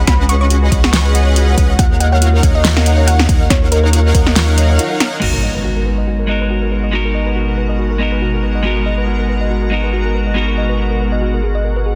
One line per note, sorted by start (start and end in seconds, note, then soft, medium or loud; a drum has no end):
0.00 1.76 C#3 medium
0.00 1.76 G#3 medium
0.00 1.76 B3 medium
0.00 1.76 F#4 loud
0.07 0.70 C#2 loud
0.07 0.69 C#4 loud
0.07 0.13 F#4 medium
0.07 0.69 G#4 medium
0.07 0.69 B4 medium
0.07 0.69 D#5 medium
0.07 0.69 F#5 loud
0.07 0.21 B5 medium
0.07 kick loud
0.07 snare medium
0.07 closed hi-hat medium
0.19 0.23 B4 medium
0.29 0.32 F#5 medium
0.29 0.37 C#6 medium
0.29 closed hi-hat medium
0.41 0.45 C#5 loud
0.41 0.47 C#6 medium
0.50 0.56 F#4 loud
0.50 closed hi-hat medium
0.62 0.66 B4 medium
0.72 1.56 C#2 loud
0.72 1.55 C#4 medium
0.72 1.56 G#4 medium
0.72 1.55 B4 medium
0.72 0.75 C#5 medium
0.72 1.56 D#5 medium
0.72 1.56 F#5 loud
0.72 kick medium
0.72 closed hi-hat medium
0.84 0.88 F#5 medium
0.84 0.90 C#6 medium
0.84 snare medium
0.93 0.98 F#4 medium
0.93 1.01 C#6 medium
0.93 snare loud
0.93 closed hi-hat medium
1.05 1.09 B4 medium
1.15 1.18 F#5 medium
1.15 closed hi-hat medium
1.27 1.31 C#5 loud
1.36 1.41 F#4 loud
1.36 closed hi-hat medium
1.48 1.52 B4 medium
1.57 1.77 C#2 loud
1.57 1.73 C#4 medium
1.57 1.73 G#4 medium
1.57 1.73 B4 medium
1.57 1.61 C#5 medium
1.57 1.73 D#5 medium
1.57 1.73 F#5 loud
1.57 kick medium
1.57 closed hi-hat medium
1.70 1.74 F#5 medium
1.79 2.41 D#2 loud
1.79 5.19 D#3 medium
1.79 5.18 F#3 medium
1.79 5.18 C#4 medium
1.79 2.41 D#4 medium
1.79 1.84 F4 medium
1.79 2.41 A#4 medium
1.79 2.41 C#5 medium
1.79 2.41 F5 medium
1.79 2.41 F#5 loud
1.79 1.99 F#5 loud
1.79 kick loud
1.79 closed hi-hat medium
1.91 1.95 A#4 medium
2.00 2.04 D#5 medium
2.00 2.08 F#5 medium
2.00 closed hi-hat medium
2.12 2.16 C#5 loud
2.12 2.18 F#5 medium
2.22 2.27 F4 loud
2.22 closed hi-hat medium
2.34 2.38 A#4 medium
2.43 3.27 D#2 loud
2.43 3.27 D#4 medium
2.43 3.27 A#4 medium
2.43 2.46 C#5 medium
2.43 3.27 C#5 medium
2.43 3.27 F5 medium
2.43 3.27 F#5 medium
2.43 kick medium
2.43 closed hi-hat medium
2.55 2.59 D#5 medium
2.55 2.86 D#5 medium
2.64 2.70 F4 medium
2.64 snare loud
2.64 closed hi-hat medium
2.76 2.81 A#4 medium
2.76 snare medium
2.86 2.89 D#5 medium
2.86 closed hi-hat medium
2.98 3.02 C#5 loud
3.07 3.13 F4 loud
3.07 3.21 F#5 medium
3.07 closed hi-hat medium
3.19 3.24 A#4 medium
3.19 snare medium
3.29 3.48 D#2 loud
3.29 3.45 D#4 medium
3.29 3.45 A#4 medium
3.29 3.32 C#5 medium
3.29 3.45 C#5 medium
3.29 3.45 F5 medium
3.29 3.45 F#5 loud
3.29 kick loud
3.29 closed hi-hat medium
3.41 3.45 D#5 medium
3.50 4.13 D#2 medium
3.50 4.12 D#4 loud
3.50 3.56 F4 medium
3.50 4.12 A#4 medium
3.50 3.64 C#5 medium
3.50 4.12 F5 medium
3.50 4.12 F#5 loud
3.50 kick loud
3.50 snare medium
3.50 closed hi-hat medium
3.62 3.66 A#4 medium
3.72 3.79 A#4 medium
3.72 3.75 D#5 medium
3.72 closed hi-hat medium
3.84 3.90 A#4 medium
3.84 3.88 C#5 loud
3.93 3.98 F4 loud
3.93 closed hi-hat medium
4.05 4.09 A#4 medium
4.14 4.79 D#2 loud
4.14 4.99 D#4 medium
4.14 4.75 A#4 medium
4.14 4.18 C#5 medium
4.14 4.99 F#5 medium
4.14 kick medium
4.14 closed hi-hat medium
4.27 4.31 D#5 medium
4.27 snare medium
4.36 4.41 F4 medium
4.36 snare loud
4.36 closed hi-hat medium
4.48 4.52 A#4 medium
4.58 4.61 D#5 medium
4.58 closed hi-hat medium
4.69 4.74 C#5 loud
4.79 4.84 F4 loud
4.79 closed hi-hat medium
4.91 4.95 A#4 medium
5.00 5.16 D#4 medium
5.00 5.16 A#4 medium
5.00 5.04 C#5 medium
5.00 5.16 C#5 medium
5.00 5.16 F5 medium
5.00 5.16 F#5 loud
5.00 snare medium
5.00 closed hi-hat medium
5.12 5.16 D#5 medium
5.20 11.95 G#1 medium
5.20 11.95 B2 medium
5.20 6.26 G#3 medium
5.20 11.95 G#3 medium
5.20 6.26 B3 medium
5.20 6.27 D#4 medium
5.20 5.27 F#4 medium
5.20 11.95 F#4 medium
5.20 6.27 F#4 medium
5.20 11.95 A#4 medium
5.20 crash medium
5.20 impact medium
5.24 6.28 A#4 loud
5.34 5.38 A#4 medium
5.43 5.46 D#5 medium
5.55 5.59 B4 medium
5.64 5.70 F#4 loud
5.76 5.81 A#4 medium
5.86 5.89 B4 medium
5.98 6.02 D#5 medium
6.07 6.13 F#4 medium
6.19 6.24 A#4 medium
6.27 6.90 G#3 medium
6.27 6.90 B3 medium
6.27 6.91 D#4 medium
6.27 6.91 F#4 medium
6.27 6.32 D#5 medium
6.31 6.92 A#4 medium
6.41 6.45 B4 medium
6.50 6.56 F#4 medium
6.62 6.66 A#4 medium
6.72 6.75 B4 medium
6.84 6.88 D#5 medium
6.91 7.97 G#3 medium
6.91 7.98 B3 medium
6.91 7.98 D#4 medium
6.91 6.98 F#4 medium
6.91 7.99 F#4 medium
6.91 7.99 A#4 loud
7.05 7.09 A#4 medium
7.15 7.18 D#5 medium
7.26 7.31 B4 medium
7.36 7.41 F#4 loud
7.48 7.52 A#4 medium
7.57 7.61 B4 medium
7.69 7.74 D#5 medium
7.79 7.84 F#4 medium
7.91 7.95 A#4 medium
7.98 8.61 G#3 medium
7.98 8.62 B3 medium
7.98 8.62 D#4 medium
7.98 8.63 F#4 medium
7.98 8.03 D#5 medium
8.02 8.63 A#4 medium
8.12 8.16 B4 loud
8.22 8.27 F#4 medium
8.34 8.38 A#4 medium
8.43 8.46 B4 medium
8.55 8.59 D#5 medium
8.63 9.68 G#3 medium
8.63 9.69 B3 medium
8.63 9.69 D#4 medium
8.63 8.70 F#4 medium
8.63 9.70 F#4 medium
8.67 9.70 A#4 loud
8.77 8.81 A#4 medium
8.86 8.89 D#5 medium
8.98 9.02 B4 loud
9.07 9.13 F#4 loud
9.19 9.24 A#4 medium
9.29 9.32 B4 medium
9.41 9.45 D#5 medium
9.50 9.56 F#4 medium
9.62 9.66 A#4 medium
9.70 10.33 G#3 medium
9.70 10.33 B3 medium
9.70 10.34 D#4 medium
9.70 10.34 F#4 medium
9.70 10.35 A#4 medium
9.70 9.75 D#5 medium
9.84 9.88 B4 loud
9.93 9.98 F#4 medium
10.05 10.09 A#4 medium
10.15 10.18 B4 medium
10.27 10.31 D#5 medium
10.34 11.40 G#3 medium
10.34 11.40 B3 medium
10.34 11.41 D#4 medium
10.34 10.41 F#4 medium
10.34 11.41 F#4 medium
10.34 11.42 A#4 loud
10.48 10.52 A#4 medium
10.58 10.61 D#5 medium
10.69 10.74 B4 medium
10.79 10.84 F#4 loud
10.91 10.95 A#4 medium
11.00 11.03 B4 medium
11.12 11.16 D#5 medium
11.22 11.27 F#4 medium
11.34 11.38 A#4 medium
11.43 11.46 G#4 medium
11.55 11.59 D#5 loud
11.65 11.70 A#4 medium
11.76 11.79 B4 loud
11.86 11.89 G#4 medium